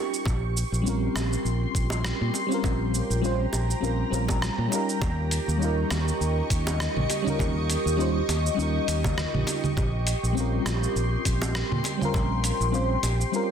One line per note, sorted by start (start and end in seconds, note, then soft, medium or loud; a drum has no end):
0.00 0.23 G3 medium
0.00 0.24 C#4 medium
0.00 0.25 D#4 medium
0.00 0.26 F4 medium
0.00 0.22 G4 medium
0.00 0.27 A#4 medium
0.00 0.22 C#6 loud
0.14 cabasa soft
0.25 0.62 A#1 medium
0.25 13.51 G4 medium
0.25 2.61 C6 medium
0.25 kick loud
0.25 high bongo medium
0.25 cabasa soft
0.57 cabasa medium
0.72 1.07 A#1 medium
0.72 cabasa soft
0.82 2.45 G3 medium
0.82 2.46 C4 medium
0.82 2.47 C#4 medium
0.87 2.48 F4 medium
0.87 2.49 A#4 medium
0.87 cabasa soft
1.15 1.35 A#1 medium
1.15 cross-stick medium
1.15 high bongo medium
1.15 cabasa medium
1.33 cabasa soft
1.45 1.65 A#1 medium
1.45 cabasa soft
1.75 2.11 A#1 medium
1.75 kick loud
1.75 cabasa medium
1.90 high bongo medium
1.90 cabasa soft
2.04 cross-stick medium
2.04 cabasa soft
2.21 2.29 A#2 medium
2.34 high bongo medium
2.34 cabasa medium
2.47 3.18 G3 medium
2.47 3.19 C4 medium
2.47 3.20 C#4 medium
2.52 3.21 F4 medium
2.52 3.22 A#4 loud
2.52 cabasa soft
2.64 3.00 A#1 loud
2.64 4.99 A#5 medium
2.64 kick loud
2.64 high bongo medium
2.64 cabasa soft
2.94 cabasa medium
3.10 3.45 A#1 medium
3.10 cabasa soft
3.22 3.45 G3 medium
3.22 3.45 C4 medium
3.22 3.46 C#4 medium
3.22 3.46 F4 medium
3.22 cabasa soft
3.26 3.47 C5 loud
3.53 3.73 A#1 medium
3.53 high bongo medium
3.53 cabasa medium
3.71 cabasa soft
3.80 4.02 A#1 medium
3.80 4.09 G3 medium
3.80 4.09 C4 medium
3.80 4.10 C#4 medium
3.80 4.10 F4 medium
3.80 4.11 A#4 medium
3.80 cabasa soft
4.10 4.48 A#1 medium
4.10 4.66 G3 medium
4.10 4.68 C4 medium
4.10 4.69 C#4 medium
4.10 4.69 F4 medium
4.10 cabasa medium
4.14 4.70 A#4 medium
4.28 kick loud
4.28 high bongo medium
4.28 cabasa soft
4.42 cross-stick medium
4.42 cabasa soft
4.58 4.66 A#2 medium
4.68 5.56 G3 medium
4.68 5.57 C#4 medium
4.68 5.58 D#4 medium
4.72 5.59 F4 medium
4.72 5.60 A#4 medium
4.72 high bongo medium
4.72 cabasa medium
4.89 cabasa soft
5.01 5.38 D#2 medium
5.01 9.73 D#5 medium
5.01 9.73 C#6 medium
5.01 kick loud
5.01 high bongo medium
5.01 cabasa soft
5.31 closed hi-hat medium
5.31 cabasa medium
5.48 5.83 D#2 medium
5.48 cabasa soft
5.57 7.20 G3 medium
5.57 7.21 C#4 medium
5.57 7.22 D#4 medium
5.62 7.23 F4 medium
5.62 7.24 A#4 medium
5.62 cabasa soft
5.90 6.10 D#2 medium
5.90 cross-stick medium
5.90 closed hi-hat medium
5.90 high bongo medium
5.90 cabasa medium
6.08 cabasa soft
6.21 6.40 D#2 medium
6.21 cabasa soft
6.50 6.86 D#2 medium
6.50 kick loud
6.50 closed hi-hat medium
6.50 cabasa medium
6.67 high bongo medium
6.67 cabasa soft
6.80 cross-stick medium
6.80 cabasa soft
6.97 7.04 A#1 medium
6.97 low conga medium
7.10 closed hi-hat medium
7.10 high bongo medium
7.10 cabasa medium
7.22 7.93 G3 medium
7.22 7.94 C#4 medium
7.26 7.95 D#4 medium
7.26 7.96 F4 medium
7.26 7.97 A#4 medium
7.26 low conga medium
7.26 cabasa soft
7.39 7.75 D#2 medium
7.39 kick loud
7.39 high bongo medium
7.39 cabasa soft
7.70 closed hi-hat medium
7.70 cabasa medium
7.86 8.20 D#2 medium
7.86 cabasa soft
7.97 8.20 G3 medium
7.97 8.21 C#4 medium
7.97 8.21 D#4 medium
7.97 8.22 F4 medium
7.97 cabasa soft
8.01 8.22 C5 loud
8.28 8.48 D#2 medium
8.28 closed hi-hat medium
8.28 high bongo medium
8.28 cabasa medium
8.46 cabasa soft
8.54 8.78 D#2 medium
8.54 9.73 G3 medium
8.54 9.74 C#4 medium
8.54 9.75 D#4 medium
8.59 9.76 F4 medium
8.59 9.77 A#4 medium
8.59 cabasa soft
8.88 9.24 D#2 medium
8.88 closed hi-hat medium
8.88 cabasa medium
9.04 kick loud
9.04 high bongo medium
9.04 low conga medium
9.04 cabasa soft
9.18 cross-stick medium
9.18 cabasa soft
9.34 9.42 A#1 medium
9.34 low conga medium
9.47 closed hi-hat medium
9.47 high bongo medium
9.47 cabasa medium
9.64 low conga medium
9.64 cabasa soft
9.77 10.13 A#1 loud
9.77 13.51 C6 loud
9.77 kick loud
9.77 high bongo medium
9.77 cabasa soft
10.07 closed hi-hat medium
10.07 cabasa medium
10.23 10.58 A#1 medium
10.23 cabasa soft
10.33 11.96 G3 medium
10.33 11.97 C4 medium
10.37 11.98 C#4 medium
10.37 11.98 F4 medium
10.37 11.99 A#4 medium
10.37 cabasa soft
10.65 10.85 A#1 medium
10.65 cross-stick medium
10.65 closed hi-hat medium
10.65 high bongo medium
10.65 cabasa medium
10.83 cabasa soft
10.96 11.15 A#1 medium
10.96 cabasa soft
11.25 11.61 A#1 medium
11.25 kick loud
11.25 closed hi-hat medium
11.25 cabasa medium
11.42 high bongo medium
11.42 cabasa soft
11.55 cross-stick medium
11.55 cabasa soft
11.72 11.80 A#2 medium
11.72 low conga medium
11.84 closed hi-hat medium
11.84 high bongo medium
11.84 cabasa medium
11.97 12.69 G3 medium
11.97 12.70 C4 medium
11.97 12.71 C#4 medium
12.01 12.71 F4 medium
12.01 12.72 A#4 loud
12.01 low conga medium
12.01 cabasa soft
12.14 12.50 A#1 loud
12.14 kick loud
12.14 high bongo medium
12.14 cabasa soft
12.44 closed hi-hat medium
12.44 cabasa medium
12.60 12.95 A#1 medium
12.60 cabasa soft
12.71 12.95 G3 medium
12.71 12.95 C4 medium
12.71 12.96 C#4 medium
12.71 12.97 F4 medium
12.71 cabasa soft
12.75 12.97 C5 loud
13.03 13.23 A#1 medium
13.03 closed hi-hat medium
13.03 high bongo medium
13.03 cabasa medium
13.21 cabasa soft
13.32 13.51 G3 medium
13.32 13.51 C4 medium
13.32 13.51 C#4 medium
13.32 13.51 F4 medium
13.32 13.51 A#4 medium
13.32 cabasa soft